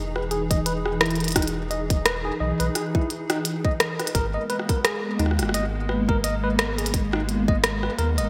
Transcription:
Already playing: sub bass E1, analog synth pad E3 D#4 G#4
0.16 tine electric piano B4, cross-stick
0.31 tine electric piano G#4, closed hi-hat
0.51 tine electric piano D#5, kick, closed hi-hat
0.66 tine electric piano B4, closed hi-hat
0.85 tine electric piano G#4, cross-stick
1.01 tine electric piano E4, cross-stick, closed hi-hat
1.06 closed hi-hat
1.11 closed hi-hat
1.16 closed hi-hat
1.20 closed hi-hat
1.24 closed hi-hat
1.28 closed hi-hat
1.31 closed hi-hat
1.36 tine electric piano D#4, kick, cross-stick, closed hi-hat
1.42 closed hi-hat
1.47 closed hi-hat
1.71 tine electric piano D#5, closed hi-hat
1.90 kick, closed hi-hat
2.05 tine electric piano B4, cross-stick, closed hi-hat
2.25 tine electric piano G#4
2.40 sub bass B1, tine electric piano D#5
2.60 sub bass B1, tine electric piano B4, closed hi-hat
2.75 tine electric piano G#4, cross-stick, closed hi-hat
2.95 tine electric piano E4, kick
3.10 closed hi-hat
3.30 tine electric piano D#4, cross-stick, closed hi-hat
3.45 closed hi-hat
3.65 tine electric piano D#5, kick
3.80 cross-stick, closed hi-hat
4.00 tine electric piano B4, cross-stick, closed hi-hat
4.07 closed hi-hat
4.15 sub bass G#1, analog synth pad G#3 A#3 B3, tine electric piano A#4, kick, closed hi-hat
4.34 tine electric piano D#5
4.50 tine electric piano B4, closed hi-hat
4.59 cross-stick
4.69 tine electric piano A#4, kick, closed hi-hat
4.84 tine electric piano G#4, cross-stick, closed hi-hat
5.19 sub bass D#2, tine electric piano D#4, cross-stick, closed hi-hat
5.26 cross-stick
5.31 cross-stick
5.39 sub bass F#1, cross-stick, closed hi-hat
5.43 cross-stick
5.49 cross-stick
5.54 sub bass G#1, tine electric piano D#5, closed hi-hat
5.89 tine electric piano B4, cross-stick
6.09 tine electric piano A#4, kick
6.24 tine electric piano D#5, closed hi-hat
6.44 tine electric piano B4
6.59 tine electric piano A#4, cross-stick, closed hi-hat
6.78 tine electric piano G#4, closed hi-hat
6.86 closed hi-hat
6.94 kick, closed hi-hat
7.13 tine electric piano D#4, cross-stick
7.29 closed hi-hat
7.48 tine electric piano D#5, kick
7.64 cross-stick, closed hi-hat
7.83 tine electric piano B4, cross-stick
7.98 sub bass D#2, tine electric piano A#4, closed hi-hat
8.18 sub bass F#1, tine electric piano D#5, closed hi-hat

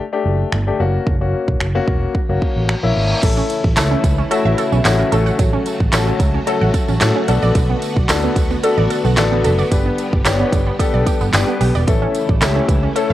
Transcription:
0.13 grand piano A3 D4 G4
0.25 fingered electric bass F#1
0.52 fingered electric bass G1, finger snap
0.67 grand piano A3 D4 G4
0.80 fingered electric bass F#1, grand piano A#3 C#4 F#4
1.07 fingered electric bass F#1, kick
1.21 grand piano A#3 C#4 F#4
1.48 fingered electric bass E1, kick
1.60 fingered electric bass F#1, finger snap
1.75 grand piano A#3 C#4 F#4
1.88 fingered electric bass E1, kick
2.15 kick, reverse cymbal
2.29 fingered electric bass F#1, grand piano A#3 C#4 F#4
2.42 kick
2.56 fingered electric bass A1
2.69 finger snap
2.83 fingered electric bass A#1, grand piano A#3 C#4 E4
2.96 fingered electric bass G#1
3.23 fingered electric bass A1, string machine C#3 E3 A3 E4, synth arpeggio sound E3, grand piano A3 C#4 E4 A4, kick, closed hi-hat, crash, tambourine
3.37 synth arpeggio sound C#4, tambourine
3.50 closed hi-hat, tambourine
3.64 fingered electric bass A1, kick
3.76 fingered electric bass C#2, grand piano A3 C#4 E4 A4, synth arpeggio sound A4, snare, clap, closed hi-hat, tambourine
3.91 synth arpeggio sound C#4
4.04 fingered electric bass C#2, synth arpeggio sound E3, kick, closed hi-hat, tambourine
4.18 synth arpeggio sound C#4
4.31 grand piano A3 C#4 E4 F#4, synth arpeggio sound A4, closed hi-hat, tambourine
4.45 fingered electric bass A1, synth arpeggio sound E5
4.58 synth arpeggio sound A4, closed hi-hat, tambourine
4.72 fingered electric bass B1, synth arpeggio sound C#4, tambourine
4.85 fingered electric bass A1, grand piano A3 C#4 E4 F#4, snare, clap, closed hi-hat, tambourine
4.99 synth arpeggio sound C#4
5.12 fingered electric bass A1, string machine F#3 A3 F#4, grand piano A3 C#4 F#4 A4, synth arpeggio sound A4, closed hi-hat, tambourine
5.26 synth arpeggio sound F#5, tambourine
5.39 fingered electric bass A1, synth arpeggio sound F#3, kick, closed hi-hat, tambourine
5.53 synth arpeggio sound C#4
5.66 closed hi-hat, tambourine
5.80 fingered electric bass A1, kick
5.93 fingered electric bass A1, grand piano A3 C#4 F#4 A4, synth arpeggio sound A4, snare, clap, closed hi-hat, tambourine
6.07 synth arpeggio sound C#4
6.20 fingered electric bass C#2, synth arpeggio sound F#3, kick, closed hi-hat, tambourine
6.34 synth arpeggio sound C#4
6.47 grand piano A3 C#4 F#4 A4, synth arpeggio sound A4, closed hi-hat, tambourine
6.61 fingered electric bass A1, synth arpeggio sound F#5
6.74 synth arpeggio sound A4, kick, closed hi-hat, tambourine
6.88 fingered electric bass A1, synth arpeggio sound C#4, tambourine
7.01 fingered electric bass A2, grand piano A3 C#4 F#4 A4, snare, clap, closed hi-hat, tambourine
7.16 synth arpeggio sound C#4
7.28 fingered electric bass B1, string machine D3 B3, grand piano B3 D4 F#4 A4, synth arpeggio sound A4, closed hi-hat, tambourine
7.43 fingered electric bass A#1, synth arpeggio sound D5, tambourine
7.55 fingered electric bass B1, synth arpeggio sound D3, kick, closed hi-hat, tambourine
7.70 synth arpeggio sound B3
7.82 closed hi-hat, tambourine
7.97 fingered electric bass B1, kick
8.09 fingered electric bass D2, grand piano B3 D4 F#4 A4, synth arpeggio sound A4, snare, clap, closed hi-hat, tambourine
8.24 synth arpeggio sound B3
8.36 fingered electric bass D2, synth arpeggio sound D3, kick, closed hi-hat, tambourine
8.51 synth arpeggio sound B3, tambourine
8.63 grand piano B3 D4 F#4 A4, synth arpeggio sound A4, closed hi-hat, tambourine
8.78 fingered electric bass A1, synth arpeggio sound D5
8.90 synth arpeggio sound A4, closed hi-hat, tambourine
9.05 fingered electric bass B1, synth arpeggio sound B3, tambourine
9.17 fingered electric bass A1, grand piano B3 D4 F#4 A4, snare, clap, closed hi-hat, tambourine
9.32 synth arpeggio sound B3
9.44 fingered electric bass F#1, synth arpeggio sound A4, closed hi-hat, tambourine
9.59 synth arpeggio sound D5, tambourine
9.71 fingered electric bass G1, synth arpeggio sound D3, string machine G3 G4, grand piano B3 D4 G4 B4, kick, closed hi-hat, tambourine
9.86 synth arpeggio sound B3
9.98 closed hi-hat, tambourine
10.13 fingered electric bass G1, kick
10.25 fingered electric bass G1, grand piano B3 D4 G4 C#5, synth arpeggio sound G4, snare, clap, closed hi-hat, tambourine
10.40 synth arpeggio sound B3
10.52 fingered electric bass G1, synth arpeggio sound D3, kick, closed hi-hat, tambourine
10.67 synth arpeggio sound B3
10.79 grand piano B3 D4 G4 A4, synth arpeggio sound G4, kick, closed hi-hat, tambourine
10.94 fingered electric bass B1, synth arpeggio sound D5
11.06 synth arpeggio sound G4, kick, closed hi-hat, tambourine
11.21 fingered electric bass G1, synth arpeggio sound B3, tambourine
11.33 fingered electric bass G1, grand piano B3 D4 G4 B4, snare, clap, closed hi-hat, tambourine
11.48 synth arpeggio sound B3
11.61 fingered electric bass B1, synth arpeggio sound G4, open hi-hat, tambourine
11.75 fingered electric bass E1, synth arpeggio sound D5, tambourine
11.87 fingered electric bass A1, string machine C#3 E3 A3 E4, synth arpeggio sound E3, grand piano A3 C#4 E4 A4, kick, closed hi-hat, tambourine
12.02 synth arpeggio sound C#4
12.15 closed hi-hat, tambourine
12.29 fingered electric bass A1, kick
12.41 fingered electric bass C#2, grand piano A3 C#4 E4 G4, synth arpeggio sound A4, snare, clap, closed hi-hat, tambourine
12.56 synth arpeggio sound C#4
12.68 fingered electric bass C#2, synth arpeggio sound E3, kick, closed hi-hat, tambourine
12.83 synth arpeggio sound C#4
12.95 grand piano A3 C#4 E4 A4, synth arpeggio sound A4, closed hi-hat, tambourine

